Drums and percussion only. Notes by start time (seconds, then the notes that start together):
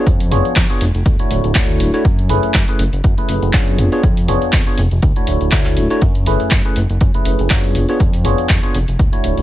0.07 kick, closed hi-hat
0.20 open hi-hat
0.32 open hi-hat
0.45 closed hi-hat
0.56 kick, clap, closed hi-hat
0.70 closed hi-hat
0.81 open hi-hat
0.95 closed hi-hat
1.06 kick, closed hi-hat
1.19 closed hi-hat
1.31 open hi-hat
1.44 closed hi-hat
1.55 kick, clap, closed hi-hat
1.69 closed hi-hat
1.80 open hi-hat
1.94 closed hi-hat
2.05 kick, closed hi-hat
2.19 closed hi-hat
2.29 open hi-hat
2.43 closed hi-hat
2.54 kick, clap, closed hi-hat
2.68 closed hi-hat
2.79 open hi-hat
2.93 closed hi-hat
3.04 kick, closed hi-hat
3.18 closed hi-hat
3.29 open hi-hat
3.42 closed hi-hat
3.53 kick, clap, closed hi-hat
3.67 closed hi-hat
3.78 open hi-hat
3.92 closed hi-hat
4.03 kick, closed hi-hat
4.17 open hi-hat
4.28 open hi-hat
4.42 closed hi-hat
4.53 kick, clap, closed hi-hat
4.66 closed hi-hat
4.78 open hi-hat
4.91 closed hi-hat
5.02 kick, closed hi-hat
5.16 closed hi-hat
5.27 open hi-hat
5.41 closed hi-hat
5.51 kick, clap, closed hi-hat
5.65 clap, closed hi-hat
5.77 open hi-hat
5.90 closed hi-hat
6.02 kick, closed hi-hat
6.15 closed hi-hat
6.26 open hi-hat
6.40 closed hi-hat
6.51 kick, clap, closed hi-hat
6.65 closed hi-hat
6.76 open hi-hat
6.90 closed hi-hat
7.01 kick, closed hi-hat
7.14 closed hi-hat
7.25 open hi-hat
7.39 closed hi-hat
7.50 kick, clap, closed hi-hat
7.64 closed hi-hat
7.75 open hi-hat
7.89 closed hi-hat
8.00 kick, closed hi-hat
8.13 open hi-hat
8.25 open hi-hat
8.38 closed hi-hat
8.49 kick, clap, closed hi-hat
8.63 closed hi-hat
8.75 open hi-hat
8.88 closed hi-hat
8.99 kick, closed hi-hat
9.13 closed hi-hat
9.24 open hi-hat
9.38 closed hi-hat